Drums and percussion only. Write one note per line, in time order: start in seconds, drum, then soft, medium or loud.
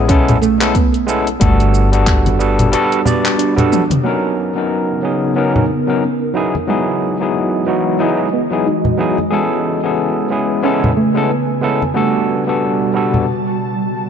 0.09 kick loud
0.09 closed hi-hat medium
0.09 shaker soft
0.28 closed hi-hat soft
0.28 low conga medium
0.28 shaker soft
0.43 shaker medium
0.61 clap medium
0.61 closed hi-hat soft
0.61 shaker soft
0.75 kick loud
0.75 closed hi-hat medium
0.75 shaker soft
0.94 closed hi-hat soft
0.94 shaker soft
1.08 shaker medium
1.27 closed hi-hat soft
1.27 shaker soft
1.41 kick loud
1.41 closed hi-hat medium
1.41 shaker soft
1.60 closed hi-hat soft
1.60 shaker soft
1.74 shaker medium
1.93 closed hi-hat soft
1.93 shaker soft
2.07 kick loud
2.07 clap medium
2.07 closed hi-hat medium
2.07 shaker soft
2.26 closed hi-hat soft
2.26 high conga medium
2.26 shaker soft
2.40 shaker medium
2.59 closed hi-hat soft
2.59 low conga medium
2.59 shaker soft
2.73 closed hi-hat medium
2.73 shaker soft
2.92 closed hi-hat soft
2.92 shaker soft
3.06 low conga medium
3.06 shaker medium
3.25 clap medium
3.25 closed hi-hat soft
3.25 shaker soft
3.39 closed hi-hat medium
3.39 shaker soft
3.58 closed hi-hat soft
3.58 low conga medium
3.58 shaker soft
3.72 high tom medium
3.72 shaker medium
3.90 closed hi-hat soft
3.90 mid tom medium
3.90 high conga medium
3.90 shaker soft
5.56 low conga medium
6.55 high conga medium
8.85 low conga medium
9.18 high conga medium
10.84 low conga medium
11.82 high conga medium
13.14 low conga medium